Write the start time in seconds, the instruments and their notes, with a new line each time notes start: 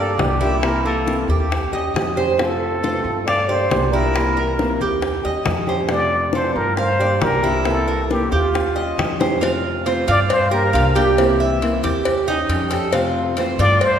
Already playing: upright bass G2, nylon-string guitar D4 G4, muted trumpet A4, cuban tres D5
0.00 nylon-string guitar A#3
0.18 upright bass C2, nylon-string guitar F3 A#3 D4 G4, muted trumpet G4, high bongo, low bongo
0.41 nylon-string guitar F3 A#3 D4 G4, cuban tres E4
0.63 nylon-string guitar C3 E3 A#3 C4 E4, muted trumpet A#4, high bongo
0.85 cuban tres A#3, muted trumpet A4, high bongo
1.06 nylon-string guitar C3 E3 A#3 C4 E4, high bongo
1.28 upright bass D#2, nylon-string guitar A#3 C4 E4, cuban tres G4, muted trumpet G4, high bongo
1.50 muted nylon-string guitar stroke, high bongo
1.72 upright bass D#2, nylon-string guitar G3 C#4 G4, cuban tres D#5
1.94 upright bass F2, nylon-string guitar D#3 G3 C#4 G4, high bongo, low bongo
2.16 nylon-string guitar G3 C#4 G4, cuban tres C5, high bongo
2.38 nylon-string guitar C3 A3 C4 F4, muted trumpet A4, high bongo
2.82 nylon-string guitar C3 E3 A3 C4 F4, cuban tres A4, high bongo
3.04 upright bass G2, nylon-string guitar A3 C4 F4
3.26 muted trumpet D5, cuban tres F5, muted nylon-string guitar stroke, high bongo
3.48 nylon-string guitar A#3 D4 G4, muted trumpet C5, cuban tres D5
3.70 upright bass C2, nylon-string guitar F3 A#3 D4 G4, high bongo, low bongo
3.91 nylon-string guitar F3 A#3 D4 G4, cuban tres E4, muted trumpet A#4
4.15 nylon-string guitar C3 E3 A#3 C4 E4, high bongo
4.37 cuban tres A#4, high bongo
4.59 nylon-string guitar C3 E3 A#3 C4 E4, high bongo
4.80 upright bass D#2, nylon-string guitar A#3 C4 E4, cuban tres G4, high bongo
5.02 muted nylon-string guitar stroke, high bongo
5.23 upright bass D#2, nylon-string guitar G3 C#4 G4, cuban tres D#5
5.45 upright bass F2, nylon-string guitar D#3 G3 C#4 G4, high bongo, low bongo
5.67 nylon-string guitar G3 C#4 G4, cuban tres C5, high bongo
5.89 nylon-string guitar C3 A3 C4 F4, muted trumpet D5, high bongo
6.33 nylon-string guitar C3 E3 A3 C4 F4, cuban tres A4, muted trumpet C5, high bongo
6.55 upright bass G2, nylon-string guitar A3 C4 F4, muted trumpet A#4
6.77 muted trumpet C5, cuban tres F5, muted nylon-string guitar stroke, high bongo
6.99 nylon-string guitar A#3 D4 G4, cuban tres D5
7.22 upright bass C2, nylon-string guitar F3 A#3 D4 G4, muted trumpet A#4, high bongo, low bongo
7.42 nylon-string guitar F3 A#3 D4 G4, cuban tres E4
7.65 nylon-string guitar C3 E3 A#3 C4 E4, muted trumpet A4, high bongo
7.88 cuban tres A#4, high bongo
8.10 nylon-string guitar C3 E3 A#3 C4 E4, muted trumpet G4, high bongo
8.31 upright bass D#2, nylon-string guitar A#3 C4 E4, muted trumpet F4, cuban tres G4, high bongo
8.53 muted nylon-string guitar stroke, high bongo
8.75 nylon-string guitar G3 C#4 G4, cuban tres D#5
8.97 upright bass F2, nylon-string guitar D#3 G3 C#4 G4, high bongo, low bongo
9.20 nylon-string guitar G3 C#4 G4, cuban tres C5, high bongo
9.41 nylon-string guitar C3 A3 C4 F4, cuban tres F4, cowbell
9.85 nylon-string guitar C3 E3 A3 C4 F4, cuban tres C5, cowbell
10.08 upright bass G2, nylon-string guitar A3 C4 F4, cuban tres F4, muted trumpet D5, cowbell
10.29 muted trumpet C5, muted nylon-string guitar stroke, cowbell
10.51 nylon-string guitar A#3 D4 G4, cuban tres A#4, muted trumpet A#4
10.72 upright bass C2, nylon-string guitar F3 A#3 D4 G4, cuban tres F4, cowbell
10.95 nylon-string guitar F3 A#3 D4 G4, cuban tres G4, muted trumpet G4, cowbell
11.18 nylon-string guitar C3 E3 A#3 C4 E4, cowbell
11.40 cuban tres E5
11.61 nylon-string guitar C3 E3 A#3 C4 E4, cowbell
11.83 upright bass D#2, nylon-string guitar A#3 C4 E4, cuban tres G4, cowbell
12.05 muted nylon-string guitar stroke, cowbell
12.27 nylon-string guitar G3 C#4 G4, cuban tres D#4
12.49 upright bass F2, nylon-string guitar D#3 G3 C#4 G4, cowbell
12.71 nylon-string guitar G3 C#4 G4, cuban tres A4, cowbell
12.93 nylon-string guitar C3 A3 C4 F4, cuban tres F4, cowbell
13.37 nylon-string guitar C3 E3 A3 C4 F4, cuban tres C5, cowbell
13.59 upright bass G2, nylon-string guitar A3 C4 F4, cuban tres F4, muted trumpet D5, cowbell
13.81 muted trumpet C5, muted nylon-string guitar stroke, cowbell